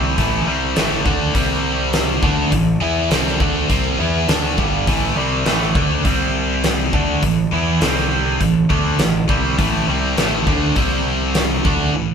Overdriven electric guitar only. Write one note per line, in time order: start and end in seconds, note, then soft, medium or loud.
0.00 0.16 C3 medium
0.00 0.17 G3 medium
0.00 0.17 C4 loud
0.17 0.46 A2 medium
0.17 0.46 E3 loud
0.17 0.47 A3 loud
0.47 0.75 C3 medium
0.47 0.76 G3 loud
0.47 0.76 C4 medium
0.76 1.05 A2 medium
0.76 1.05 E3 medium
0.76 1.05 A3 medium
1.05 1.34 D3 medium
1.05 1.34 A3 loud
1.05 1.34 D4 loud
1.35 2.22 C3 medium
1.35 2.22 G3 medium
1.35 2.23 C4 loud
2.23 2.51 D3 medium
2.23 2.51 A3 medium
2.23 2.52 D4 loud
2.52 2.75 A2 medium
2.52 2.76 E3 medium
2.81 3.09 E3 medium
2.81 3.10 B3 medium
2.81 3.10 E4 loud
3.10 3.39 C3 medium
3.10 3.39 G3 medium
3.10 3.40 C4 loud
3.40 3.68 D3 medium
3.40 3.69 A3 medium
3.40 3.69 D4 loud
3.69 3.98 C3 medium
3.69 3.98 G3 medium
3.69 3.98 C4 loud
3.99 4.27 E3 medium
3.99 4.28 B3 medium
3.99 4.28 E4 medium
4.28 4.57 D3 medium
4.28 4.57 A3 medium
4.28 4.57 D4 loud
4.58 4.86 G2 medium
4.58 4.86 D3 medium
4.58 4.87 G3 loud
4.87 5.16 A2 medium
4.87 5.16 E3 loud
4.87 5.16 A3 medium
5.16 5.45 C3 medium
5.16 5.45 G3 medium
5.16 5.46 C4 medium
5.46 5.74 A2 medium
5.46 5.75 E3 medium
5.46 5.75 A3 medium
5.75 6.04 D3 medium
5.75 6.04 A3 loud
5.75 6.04 D4 medium
6.04 6.92 C3 medium
6.04 6.92 G3 medium
6.04 6.93 C4 loud
6.93 7.22 D3 medium
6.93 7.22 A3 medium
6.93 7.22 D4 medium
7.23 7.46 A2 medium
7.23 7.46 E3 medium
7.53 7.81 E3 medium
7.53 7.81 B3 medium
7.53 7.81 E4 medium
7.82 8.40 C3 medium
7.82 8.40 G3 medium
7.82 8.40 C4 medium
8.41 8.64 A2 medium
8.41 8.64 E3 medium
8.70 8.98 D3 medium
8.70 8.99 A3 loud
8.70 8.99 D4 loud
9.00 9.23 A2 medium
9.00 9.23 E3 medium
9.29 9.57 C3 medium
9.29 9.58 G3 loud
9.29 9.58 C4 loud
9.58 9.87 A2 medium
9.58 9.87 E3 medium
9.58 9.87 A3 loud
9.88 10.16 C3 medium
9.88 10.17 G3 medium
9.88 10.17 C4 medium
10.18 10.46 A2 medium
10.18 10.46 E3 medium
10.18 10.46 A3 medium
10.46 10.75 D3 medium
10.46 10.76 A3 loud
10.46 10.76 D4 loud
10.76 11.64 C3 medium
10.76 11.64 G3 medium
10.76 11.64 C4 loud
11.64 11.93 D3 medium
11.64 11.94 A3 medium
11.64 11.94 D4 medium
11.94 12.14 A2 medium
11.94 12.14 E3 medium